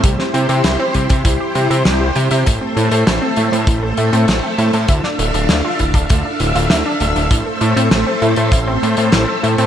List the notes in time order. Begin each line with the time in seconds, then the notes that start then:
Already playing: C5
0.03 C2 G3 E4 G4, kick, closed hi-hat
0.19 C4, snare
0.34 C3 E4, closed hi-hat
0.49 C3 G4, closed hi-hat
0.64 C2 E4, snare, closed hi-hat
0.79 C4
0.94 C3 G3, kick, closed hi-hat
1.09 C3 C4, kick, closed hi-hat
1.25 C2 E4, kick, closed hi-hat
1.40 G4
1.55 C3 G3, closed hi-hat
1.70 C3 E4, closed hi-hat
1.85 C2 G3, snare, closed hi-hat
2.01 G3
2.15 C3 G5, closed hi-hat
2.31 C3 E5, closed hi-hat
2.46 A1 A3 A4 E5, kick, closed hi-hat
2.61 C4
2.77 A2 E4, closed hi-hat
2.91 A2 A4, closed hi-hat
3.07 A1 E4, snare, closed hi-hat
3.22 C4
3.36 A2 A3, closed hi-hat
3.52 A2 C4, closed hi-hat
3.67 A1 E4, kick, closed hi-hat
3.83 A4
3.97 A2 E4, closed hi-hat
4.13 A2 C4, closed hi-hat
4.28 A1 A3, snare, closed hi-hat
4.43 C4
4.58 A2 E4, closed hi-hat
4.73 A2 A4, closed hi-hat
4.88 D2 D4 E4 F5, kick, closed hi-hat
5.04 D4, snare
5.19 D1 A3, closed hi-hat
5.34 D1 D4, closed hi-hat
5.49 D2 E4, snare, closed hi-hat
5.65 F4
5.79 D1 E4, kick, closed hi-hat
5.94 D1 D4, kick, closed hi-hat
6.09 D2 A3, kick, closed hi-hat
6.25 D4
6.40 D1 E4, closed hi-hat
6.55 D1 F4, closed hi-hat
6.70 D2 E4, snare, closed hi-hat
6.86 D4
7.00 D1 A3, closed hi-hat
7.16 D1 D4, closed hi-hat
7.31 A1 A3 E4 A4 C5, kick, closed hi-hat
7.46 A4
7.61 A2 E4, closed hi-hat
7.76 A2 C4, closed hi-hat
7.91 A1 A3, snare, closed hi-hat
8.07 C4
8.22 A2 E4, closed hi-hat
8.36 A2 A4, closed hi-hat
8.52 A1 E4, kick, closed hi-hat
8.67 C4
8.83 A2 A3, closed hi-hat
8.97 A2 C4, closed hi-hat
9.12 A1 E4, snare, closed hi-hat
9.28 A4
9.43 A2 E4, closed hi-hat
9.58 A2 C4, closed hi-hat